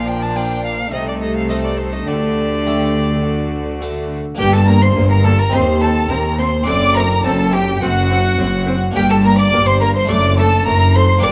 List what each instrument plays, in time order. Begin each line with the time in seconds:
Already playing: double bass section A#1, harpsichord A#2, cello section A#2, viola section F3, violin section D4 A#4
0.08 violin G5
0.22 violin A5
0.35 harpsichord A#3 F4 D5, violin G5
0.65 violin F5
0.92 double bass section C2, harpsichord C3, cello section C3, viola section A3, violin section D#4 A4, violin D#5
1.08 violin D5
1.22 violin D#5
1.36 violin F5
1.50 harpsichord A3 A4 C5, violin D#5
1.65 violin D5
1.78 violin C5
1.93 violin D#5
2.07 double bass section D2, cello section D3, harpsichord D3, violin section G4, violin D5
2.66 harpsichord A3 G4 A4
3.24 violin section F#4
3.81 harpsichord A3 F#4 A4
4.35 cello section G2, harpsichord A#3 D4 G4, violin G4, violin section G5
4.39 double bass section G1, harpsichord G2, viola section A#3
4.53 violin A4, violin section A5
4.67 viola section A#3, violin A#4, violin section A#5
4.81 violin C5, violin section C6
4.96 double bass section G1, cello section G2, harpsichord G2, viola section A#3
5.10 violin A#4, violin section A#5
5.24 viola section A#3, violin A4, violin section A5
5.39 violin A#4, violin section A#5
5.49 cello section D#2, double bass section D#2, harpsichord C4 D#4 G4, violin C5, violin section C6
5.54 harpsichord D#2, viola section C4
5.81 viola section C4, violin A4, violin section A5
6.10 cello section D#2, double bass section D#2, harpsichord D#2, viola section C4, violin A#4, violin section A#5
6.39 viola section C4, violin C5, violin section C6
6.63 harpsichord C4 D4 A4
6.67 double bass section F#1, cello section F#2, harpsichord F#2, viola section C4, violin D5, violin section D6
6.95 viola section C4, violin A#4, violin section A#5
7.24 double bass section F#1, harpsichord F#2, cello section F#2, viola section C4, violin A4, violin section A5
7.53 viola section C4, violin G4, violin section G5
7.81 double bass section F#1, harpsichord F#2, cello section F#2, viola section C4, violin F#4, violin section F#5
8.10 viola section C4
8.39 double bass section F#1, harpsichord F#2, cello section F#2, viola section C4
8.67 viola section C4
8.91 harpsichord A#3 D4 G4
8.95 double bass section G1, harpsichord G2, cello section G2, viola section A#3, violin G4, violin section G5
9.10 violin A4, violin section A5
9.24 viola section A#3, violin A#4, violin section A#5
9.38 violin D5, violin section D6
9.52 double bass section G1, harpsichord G2, cello section G2, viola section A#3
9.66 violin C5, violin section C6
9.81 viola section A#3, violin A#4, violin section A#5
9.96 violin C5, violin section C6
10.05 harpsichord A3 D4 A4
10.09 double bass section F#1, cello section F#2, harpsichord F#2, viola section A3, violin D5, violin section D6
10.38 viola section A3, violin A4, violin section A5
10.65 double bass section F#1, cello section F#2, harpsichord F#2, viola section A3, violin A#4, violin section A#5
10.94 viola section A3, violin C5, violin section C6
11.18 harpsichord A#3 D4 G4
11.23 double bass section G1, harpsichord G2, cello section G2, viola section A#3, violin D5, violin section D6